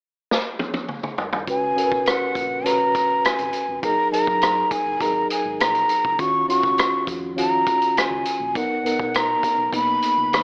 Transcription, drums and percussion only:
0.31 snare medium
0.59 high tom medium
0.74 high tom medium
0.88 mid tom medium
1.03 mid tom medium
1.18 floor tom medium
1.33 floor tom medium
1.47 kick medium
1.47 closed hi-hat medium
1.78 closed hi-hat medium
1.92 kick medium
2.06 cross-stick loud
2.06 closed hi-hat medium
2.35 kick medium
2.35 closed hi-hat medium
2.66 cross-stick soft
2.66 closed hi-hat medium
2.95 kick medium
2.95 closed hi-hat medium
3.25 cross-stick medium
3.25 closed hi-hat medium
3.38 closed hi-hat soft
3.53 closed hi-hat medium
3.83 kick medium
3.83 closed hi-hat medium
4.13 closed hi-hat medium
4.27 kick medium
4.41 cross-stick medium
4.41 closed hi-hat medium
4.71 kick medium
4.71 closed hi-hat medium
5.01 kick medium
5.01 cross-stick soft
5.01 closed hi-hat medium
5.30 closed hi-hat medium
5.60 cross-stick medium
5.60 closed hi-hat medium
5.75 closed hi-hat soft
5.89 closed hi-hat medium
6.05 kick medium
6.19 kick medium
6.19 closed hi-hat medium
6.50 closed hi-hat medium
6.63 kick medium
6.78 cross-stick loud
6.78 closed hi-hat medium
7.07 kick medium
7.07 closed hi-hat medium
7.38 closed hi-hat medium
7.66 kick medium
7.66 closed hi-hat medium
7.82 closed hi-hat soft
7.97 cross-stick medium
7.97 closed hi-hat medium
8.25 closed hi-hat medium
8.55 kick medium
8.55 closed hi-hat medium
8.86 closed hi-hat medium
9.00 kick medium
9.14 cross-stick loud
9.14 closed hi-hat medium
9.43 kick medium
9.43 closed hi-hat medium
9.73 kick medium
9.73 closed hi-hat medium
10.02 closed hi-hat medium
10.33 cross-stick medium
10.33 closed hi-hat medium

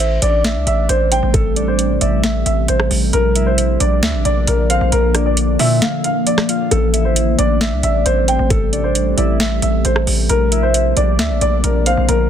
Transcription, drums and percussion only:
0.00 closed hi-hat medium
0.22 closed hi-hat medium
0.44 snare loud
0.44 closed hi-hat medium
0.67 closed hi-hat medium
0.89 closed hi-hat medium
1.12 closed hi-hat medium
1.34 kick loud
1.34 closed hi-hat medium
1.56 closed hi-hat medium
1.79 closed hi-hat medium
2.01 closed hi-hat medium
2.23 snare loud
2.23 closed hi-hat medium
2.46 closed hi-hat medium
2.68 closed hi-hat medium
2.80 cross-stick medium
2.91 open hi-hat medium
3.13 closed hi-hat medium
3.36 closed hi-hat medium
3.58 closed hi-hat loud
3.80 closed hi-hat medium
4.03 snare loud
4.03 closed hi-hat medium
4.25 closed hi-hat medium
4.47 closed hi-hat medium
4.70 closed hi-hat medium
4.92 closed hi-hat medium
5.15 cross-stick medium
5.15 closed hi-hat medium
5.37 closed hi-hat medium
5.59 open hi-hat medium
5.82 snare loud
5.82 closed hi-hat medium
6.04 closed hi-hat medium
6.27 closed hi-hat medium
6.38 cross-stick medium
6.38 snare medium
6.49 closed hi-hat medium
6.71 closed hi-hat medium
6.94 closed hi-hat medium
7.16 closed hi-hat loud
7.39 closed hi-hat medium
7.61 snare loud
7.61 closed hi-hat medium
7.83 closed hi-hat medium
8.06 closed hi-hat medium
8.28 closed hi-hat medium
8.50 kick loud
8.50 closed hi-hat medium
8.73 closed hi-hat medium
8.95 closed hi-hat medium
9.18 closed hi-hat medium
9.40 snare loud
9.40 closed hi-hat medium
9.62 closed hi-hat medium
9.85 closed hi-hat medium
9.96 cross-stick medium
10.07 open hi-hat medium
10.29 closed hi-hat medium
10.52 closed hi-hat medium
10.74 closed hi-hat medium
10.97 closed hi-hat medium
11.19 snare loud
11.19 closed hi-hat medium
11.41 closed hi-hat medium
11.64 closed hi-hat medium
11.86 closed hi-hat medium
12.09 closed hi-hat medium

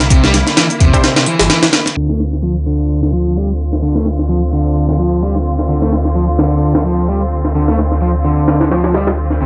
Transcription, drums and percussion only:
0.00 snare medium
0.00 closed hi-hat medium
0.10 kick loud
0.10 closed hi-hat medium
0.24 snare medium
0.24 closed hi-hat soft
0.34 snare soft
0.34 closed hi-hat medium
0.47 snare soft
0.47 closed hi-hat medium
0.57 snare loud
0.57 closed hi-hat medium
0.70 closed hi-hat soft
0.80 kick medium
0.80 closed hi-hat medium
0.93 kick medium
0.93 closed hi-hat medium
1.04 snare loud
1.04 closed hi-hat medium
1.16 snare loud
1.16 closed hi-hat medium
1.16 closed hi-hat soft
1.26 closed hi-hat medium
1.39 snare loud
1.39 closed hi-hat medium
1.50 snare loud
1.50 closed hi-hat medium
1.63 snare loud
1.63 closed hi-hat medium
1.63 closed hi-hat soft
1.73 snare loud
1.73 closed hi-hat medium
1.86 snare soft
1.86 closed hi-hat medium
1.96 closed hi-hat medium
2.09 snare medium
2.20 snare medium
2.20 closed hi-hat medium
2.33 snare soft
2.43 closed hi-hat medium
2.66 closed hi-hat medium
2.90 closed hi-hat medium
3.03 snare soft
3.13 closed hi-hat medium
3.37 closed hi-hat medium
3.60 closed hi-hat medium
3.73 snare soft
3.83 closed hi-hat medium
3.96 snare medium
4.06 snare soft
4.06 closed hi-hat medium
4.19 snare soft
4.29 closed hi-hat medium
4.43 closed hi-hat soft
4.53 closed hi-hat medium
4.76 closed hi-hat medium
4.89 snare soft
4.99 closed hi-hat medium
5.22 closed hi-hat medium
5.35 snare soft
5.45 closed hi-hat medium
5.59 snare soft
5.69 closed hi-hat medium
5.82 snare medium
5.93 snare medium
5.93 closed hi-hat medium
6.05 snare soft
6.15 closed hi-hat medium
6.39 snare medium
6.39 closed hi-hat medium
6.52 closed hi-hat soft
6.62 closed hi-hat medium
6.75 snare loud
6.75 closed hi-hat medium
6.85 closed hi-hat soft
6.98 closed hi-hat medium
7.09 closed hi-hat medium
7.32 closed hi-hat medium
7.45 snare soft
7.55 closed hi-hat medium
7.68 snare medium
7.79 snare soft
7.79 closed hi-hat medium
7.92 snare soft
8.02 closed hi-hat medium
8.15 closed hi-hat soft
8.25 closed hi-hat medium
8.48 snare loud
8.48 closed hi-hat medium
8.61 snare loud
8.61 closed hi-hat medium
8.71 snare loud
8.71 closed hi-hat medium
8.84 snare medium
8.84 closed hi-hat medium
8.94 snare loud
8.94 closed hi-hat medium
9.07 snare loud
9.07 closed hi-hat medium
9.18 closed hi-hat medium
9.31 snare soft
9.41 closed hi-hat medium

